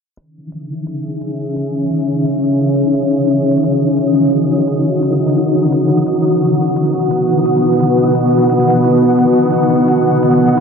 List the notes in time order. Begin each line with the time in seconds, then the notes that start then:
0.17 C#3 D#3 D#6, closed hi-hat
0.28 C#4 E5
0.52 G#4, closed hi-hat
0.87 closed hi-hat
1.22 closed hi-hat
1.56 closed hi-hat
1.91 closed hi-hat
2.26 closed hi-hat
2.60 closed hi-hat
2.86 F#4
2.95 closed hi-hat
3.30 closed hi-hat
3.64 D#5, closed hi-hat
3.99 closed hi-hat
4.33 closed hi-hat
4.68 closed hi-hat
5.03 closed hi-hat
5.38 closed hi-hat
5.72 B2, closed hi-hat
5.93 F#5
6.07 B3, closed hi-hat
6.77 closed hi-hat
7.11 closed hi-hat
7.46 closed hi-hat
7.80 closed hi-hat
8.15 closed hi-hat
8.50 closed hi-hat
8.84 closed hi-hat
9.19 closed hi-hat
9.54 closed hi-hat
9.88 closed hi-hat
10.23 closed hi-hat